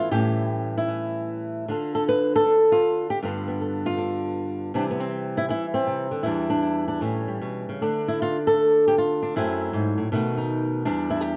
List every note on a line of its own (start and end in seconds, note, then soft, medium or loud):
0.00 0.10 A2 medium
0.00 0.11 G3 soft
0.00 0.12 B3 soft
0.00 0.11 F4 medium
0.11 1.68 A2 medium
0.11 0.87 E3 soft
0.11 1.69 G3 soft
0.11 1.67 C#4 soft
0.11 0.76 G4 loud
0.77 1.69 E4 medium
0.88 1.66 E3 soft
1.68 3.22 D3 medium
1.68 2.46 D4 soft
1.68 2.71 F4 soft
1.68 1.94 A4 soft
1.95 2.03 A4 medium
2.09 2.33 B4 medium
2.36 3.11 A4 loud
2.46 3.21 D4 soft
2.72 3.10 F4 medium
3.10 3.18 G4 medium
3.22 4.72 G2 medium
3.22 3.96 D3 soft
3.22 3.47 B3 soft
3.22 3.85 F4 soft
3.22 3.60 A4 medium
3.48 4.72 B3 soft
3.61 4.72 A4 soft
3.86 4.74 F4 medium
3.98 4.73 D3 medium
4.74 5.49 C3 medium
4.74 5.48 E3 medium
4.74 6.25 G3 soft
4.74 4.84 D4 medium
4.91 5.00 B3 medium
5.00 5.73 C4 loud
5.37 5.44 E4 medium
5.49 6.11 E3 medium
5.49 5.65 E4 medium
5.74 6.24 C4 medium
5.87 6.11 C3 medium
6.11 6.24 D3 medium
6.23 7.01 E2 medium
6.23 7.00 E3 soft
6.23 7.01 G3 soft
6.23 6.49 D4 soft
6.23 6.61 E4 medium
6.50 6.87 D4 medium
6.62 7.01 E4 medium
6.88 7.02 D4 medium
7.01 7.41 A2 medium
7.01 7.80 E3 soft
7.01 7.27 G3 soft
7.01 7.81 C#4 medium
7.28 7.82 G3 soft
7.42 7.68 B2 medium
7.69 7.82 C#3 medium
7.81 9.35 D3 medium
7.81 9.34 A3 soft
7.81 8.46 D4 medium
8.08 8.21 E4 medium
8.22 8.37 F4 medium
8.47 8.85 A4 loud
8.88 8.94 G4 loud
8.98 9.36 F4 medium
9.23 9.35 D4 medium
9.36 9.73 F#2 medium
9.36 10.10 F#3 soft
9.36 10.10 A3 soft
9.36 10.10 C4 soft
9.36 10.12 E4 medium
9.73 9.98 G#2 medium
9.98 10.11 A2 medium
10.12 10.85 B2 medium
10.12 10.86 D#3 medium
10.12 10.86 A3 medium
10.12 10.36 D#4 medium
10.12 10.87 F#4 medium
10.37 10.85 D#4 medium
10.85 11.37 E2 medium
10.85 11.37 G3 medium
10.85 11.37 B3 medium
10.85 11.37 D4 loud
11.10 11.21 E4 medium
11.21 11.37 G4 loud